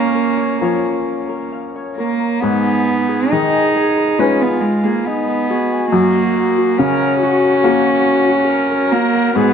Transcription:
Already playing: upright piano A#2 A#3, cello A#3, viola C#4, harp A#4 C#5 F5 A#5
0.15 harp A#4
0.37 harp C#5
0.61 upright piano F3 C#4 C#5, harp A#4
0.84 harp A#5
1.29 harp A#4
1.52 harp F5
1.75 harp C#5
1.97 cello A#3, harp A#4
2.20 harp A#5
2.41 upright piano G#2, cello B3, viola D#4, harp G#4
2.66 harp G#5
2.87 harp B4
3.09 harp G#4
3.31 upright piano D#3, cello D#4, viola G#4, harp D#5
3.53 harp G#5
3.75 harp G#4
3.97 harp B4
4.19 upright piano G#3 D#4 B4, cello C#4, viola F4, harp G#4
4.42 cello B3, harp G#5
4.61 cello G#3
4.84 cello A#3, harp G#4
5.05 cello B3, viola D#4, harp D#5
5.28 harp B4
5.50 viola F#4, harp G#4
5.72 harp G#5
5.92 upright piano F#2, cello A#3, harp F#4
6.16 harp F#5
6.36 harp A#4
6.58 harp F#4
6.78 upright piano C#3, cello C#4, viola A#4, harp C#5
7.01 harp F#5
7.22 viola F#4, harp F#4
7.43 harp A#4
7.64 upright piano A#3 F#4 A#4, harp F#4
7.87 harp F#5
8.29 harp F#4
8.49 viola A#4, harp C#5
8.71 harp A#4
8.92 cello A#3, harp F#4
9.16 harp F#5
9.36 upright piano G#2, cello B3, harp G#4, viola G#4

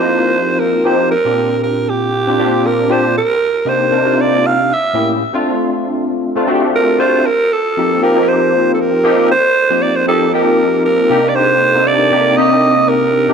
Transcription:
Already playing: tine electric piano F3 A#3 C4 D#4 E4 G4, alto saxophone C5
0.02 tine electric piano F4
0.60 alto saxophone A#4
0.84 tine electric piano F3 A#3 C4 D#4 G4, alto saxophone C5
1.11 alto saxophone A#4
1.24 tine electric piano A#2 C4 D4 F4 G4
1.63 alto saxophone A#4
1.89 alto saxophone G4
2.27 tine electric piano A#2 C4 D4 F4 G4
2.38 tine electric piano A#2 C4 D4 F4 G4
2.66 alto saxophone A#4
2.88 tine electric piano A#2 C4 D4 F4 G4, alto saxophone C5
3.18 alto saxophone A#4
3.65 tine electric piano C3 A#3 D4 D#4 G4
3.69 alto saxophone C5
3.91 tine electric piano C3 A#3 D4 D#4 A#4
4.04 tine electric piano C3 A#3 D4 D#4 F4
4.21 alto saxophone D5
4.47 alto saxophone F5
4.73 alto saxophone E5
4.93 tine electric piano A2 A#3 C#4 E4 G4
5.33 tine electric piano A3 C4 D4 F4
6.35 tine electric piano A3 C4 D4 F4
6.47 tine electric piano A3 C4 D4 F#4
6.54 tine electric piano G4
6.75 alto saxophone A#4
6.98 tine electric piano A3 C4 D4 F4, alto saxophone C5
7.26 alto saxophone A#4
7.53 alto saxophone A4
7.77 tine electric piano F3 A#3 C4 D#4 G4
8.01 tine electric piano F3 A#3 C4 D#4 G4, alto saxophone A#4
8.15 tine electric piano F3 A#3 C4 D#4 F4
8.22 tine electric piano G4
8.29 alto saxophone C5
8.74 alto saxophone A4
8.81 alto saxophone A#4
9.03 tine electric piano F3 A#3 C4 D#4 G4
9.31 alto saxophone C5
9.69 tine electric piano F3 A#3 C4 D#4 G4
9.82 alto saxophone D5
9.96 alto saxophone C5
10.07 tine electric piano F3 A#3 C4 D#4 G4, alto saxophone A4
10.33 tine electric piano F3 A#3 C4 D#4 G4, alto saxophone A#4
10.85 alto saxophone A#4
11.09 tine electric piano C3 A#3 D4 D#4 G4
11.29 alto saxophone D5
11.35 alto saxophone C5
11.74 tine electric piano C3 A#3 D4 D#4 A4
11.87 alto saxophone D5
12.11 tine electric piano C3 A#3 D4 D#4 G4
12.37 tine electric piano C3 A#3 C4 D#4 G4, alto saxophone D#5
12.89 alto saxophone A#4
13.28 tine electric piano C3 A#3 D4 D#4 G4

